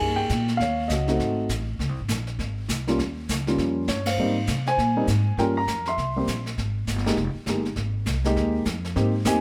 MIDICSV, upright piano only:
0, 0, Header, 1, 2, 480
1, 0, Start_track
1, 0, Key_signature, -4, "minor"
1, 0, Tempo, 298656
1, 961, Time_signature, 4, 2, 24, 8
1, 15119, End_track
2, 0, Start_track
2, 0, Title_t, "Upright piano"
2, 0, Program_c, 0, 0
2, 0, Note_on_c, 0, 58, 45
2, 0, Note_on_c, 0, 63, 42
2, 0, Note_on_c, 0, 67, 41
2, 0, Note_on_c, 0, 68, 49
2, 0, Note_on_c, 0, 80, 87
2, 243, Note_off_c, 0, 80, 0
2, 258, Note_on_c, 0, 79, 84
2, 437, Note_off_c, 0, 58, 0
2, 441, Note_off_c, 0, 63, 0
2, 445, Note_off_c, 0, 67, 0
2, 446, Note_off_c, 0, 68, 0
2, 719, Note_off_c, 0, 79, 0
2, 920, Note_on_c, 0, 77, 85
2, 994, Note_on_c, 0, 73, 59
2, 1416, Note_on_c, 0, 75, 61
2, 1436, Note_off_c, 0, 77, 0
2, 1473, Note_on_c, 0, 66, 44
2, 1728, Note_off_c, 0, 66, 0
2, 1734, Note_on_c, 0, 57, 49
2, 1744, Note_on_c, 0, 60, 43
2, 1746, Note_on_c, 0, 63, 47
2, 1752, Note_on_c, 0, 66, 56
2, 1873, Note_off_c, 0, 73, 0
2, 2365, Note_off_c, 0, 57, 0
2, 2370, Note_off_c, 0, 60, 0
2, 2371, Note_off_c, 0, 63, 0
2, 2374, Note_off_c, 0, 66, 0
2, 2613, Note_off_c, 0, 75, 0
2, 4619, Note_on_c, 0, 55, 58
2, 4626, Note_on_c, 0, 58, 49
2, 4632, Note_on_c, 0, 61, 50
2, 4638, Note_on_c, 0, 65, 64
2, 4787, Note_off_c, 0, 55, 0
2, 4791, Note_off_c, 0, 58, 0
2, 4793, Note_off_c, 0, 61, 0
2, 4796, Note_off_c, 0, 65, 0
2, 5581, Note_on_c, 0, 55, 51
2, 5594, Note_on_c, 0, 58, 42
2, 5594, Note_on_c, 0, 65, 56
2, 5596, Note_on_c, 0, 61, 44
2, 6209, Note_off_c, 0, 55, 0
2, 6216, Note_off_c, 0, 58, 0
2, 6216, Note_off_c, 0, 65, 0
2, 6217, Note_off_c, 0, 61, 0
2, 6243, Note_on_c, 0, 73, 65
2, 6539, Note_on_c, 0, 77, 65
2, 6541, Note_off_c, 0, 73, 0
2, 6566, Note_on_c, 0, 72, 45
2, 6740, Note_on_c, 0, 55, 53
2, 6742, Note_on_c, 0, 58, 50
2, 6750, Note_on_c, 0, 63, 60
2, 6751, Note_on_c, 0, 60, 53
2, 6992, Note_off_c, 0, 55, 0
2, 6993, Note_off_c, 0, 58, 0
2, 6997, Note_off_c, 0, 63, 0
2, 6998, Note_off_c, 0, 60, 0
2, 7445, Note_off_c, 0, 72, 0
2, 7514, Note_on_c, 0, 80, 92
2, 7525, Note_off_c, 0, 77, 0
2, 7529, Note_on_c, 0, 72, 54
2, 7981, Note_on_c, 0, 55, 59
2, 7983, Note_on_c, 0, 58, 52
2, 7985, Note_on_c, 0, 63, 61
2, 7989, Note_on_c, 0, 60, 53
2, 8149, Note_off_c, 0, 55, 0
2, 8150, Note_off_c, 0, 58, 0
2, 8151, Note_off_c, 0, 63, 0
2, 8153, Note_off_c, 0, 60, 0
2, 8598, Note_off_c, 0, 72, 0
2, 8653, Note_on_c, 0, 55, 55
2, 8658, Note_on_c, 0, 79, 83
2, 8661, Note_on_c, 0, 58, 49
2, 8665, Note_on_c, 0, 61, 50
2, 8665, Note_on_c, 0, 65, 58
2, 8673, Note_on_c, 0, 70, 63
2, 8690, Note_off_c, 0, 80, 0
2, 8739, Note_off_c, 0, 79, 0
2, 8909, Note_off_c, 0, 55, 0
2, 8913, Note_off_c, 0, 58, 0
2, 8915, Note_off_c, 0, 61, 0
2, 8915, Note_off_c, 0, 65, 0
2, 8956, Note_on_c, 0, 82, 86
2, 9439, Note_off_c, 0, 82, 0
2, 9445, Note_on_c, 0, 84, 83
2, 9463, Note_on_c, 0, 76, 58
2, 9555, Note_off_c, 0, 70, 0
2, 9905, Note_on_c, 0, 55, 51
2, 9916, Note_on_c, 0, 58, 45
2, 9923, Note_on_c, 0, 60, 47
2, 9926, Note_on_c, 0, 67, 58
2, 10072, Note_off_c, 0, 55, 0
2, 10077, Note_off_c, 0, 58, 0
2, 10081, Note_off_c, 0, 60, 0
2, 10082, Note_off_c, 0, 67, 0
2, 10325, Note_off_c, 0, 84, 0
2, 10334, Note_off_c, 0, 76, 0
2, 11348, Note_on_c, 0, 56, 60
2, 11350, Note_on_c, 0, 58, 51
2, 11355, Note_on_c, 0, 67, 62
2, 11360, Note_on_c, 0, 63, 50
2, 11513, Note_off_c, 0, 56, 0
2, 11514, Note_off_c, 0, 58, 0
2, 11517, Note_off_c, 0, 67, 0
2, 11519, Note_off_c, 0, 63, 0
2, 12028, Note_on_c, 0, 58, 43
2, 12033, Note_on_c, 0, 56, 45
2, 12042, Note_on_c, 0, 67, 49
2, 12043, Note_on_c, 0, 63, 45
2, 12276, Note_off_c, 0, 58, 0
2, 12279, Note_off_c, 0, 56, 0
2, 12283, Note_off_c, 0, 67, 0
2, 12284, Note_off_c, 0, 63, 0
2, 13266, Note_on_c, 0, 58, 55
2, 13270, Note_on_c, 0, 56, 60
2, 13279, Note_on_c, 0, 63, 51
2, 13285, Note_on_c, 0, 67, 70
2, 13891, Note_off_c, 0, 58, 0
2, 13893, Note_off_c, 0, 56, 0
2, 13898, Note_off_c, 0, 63, 0
2, 13901, Note_off_c, 0, 67, 0
2, 14397, Note_on_c, 0, 60, 48
2, 14400, Note_on_c, 0, 58, 53
2, 14404, Note_on_c, 0, 63, 49
2, 14412, Note_on_c, 0, 67, 61
2, 14659, Note_off_c, 0, 60, 0
2, 14660, Note_off_c, 0, 58, 0
2, 14662, Note_off_c, 0, 63, 0
2, 14666, Note_off_c, 0, 67, 0
2, 14877, Note_on_c, 0, 58, 65
2, 14883, Note_on_c, 0, 60, 57
2, 14884, Note_on_c, 0, 63, 60
2, 14891, Note_on_c, 0, 67, 69
2, 14903, Note_on_c, 0, 80, 85
2, 15119, Note_off_c, 0, 58, 0
2, 15119, Note_off_c, 0, 60, 0
2, 15119, Note_off_c, 0, 63, 0
2, 15119, Note_off_c, 0, 67, 0
2, 15119, Note_off_c, 0, 80, 0
2, 15119, End_track
0, 0, End_of_file